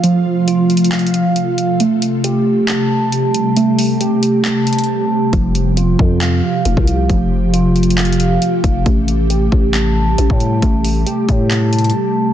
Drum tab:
HH |x-----------------------x-----------x---x---x---x---x---x---x-----------x-----------x-----------|x-----------x-----------x-----------------------x-----------------------x-----------x-----------|x-----------o-----------x-----------x-----------x-----------x--x--x--x--------------------------|x-----------x-----------x-----------------------x-----------------------x-----------x-----------|
CP |------------------------------------------------x-----------------------------------------------|------------------------------------------------x-----------------------------------------------|------------------------------------------------x-----------------------------------------------|------------------------------------------------x-----------------------------------------------|
BD |------------------------------------------------------------------------------------------------|------------------------------------------------------------------------------------------------|------------------------------------------------------------------------------------------------|o-----------------------------------o-----------------------------------------o-----------------|

HH |x-----------------------x-----------x---x---x---x---x---x---x-----------x-----------x-----------|x-----------x-----------x-----------------------x-----------------------x-----------x-----------|x-----------o-----------x-----------x-----------x-----------x--x--x--x--------------------------|
CP |------------------------------------------------x-----------------------------------------------|------------------------------------------------x-----------------------------------------------|------------------------------------------------x-----------------------------------------------|
BD |o-----------------------------------------------------------------------------------o-----------|o-----------------------------------o-----------------------------------------o-----------------|o-----------------------------------o-----------------------------------------------------------|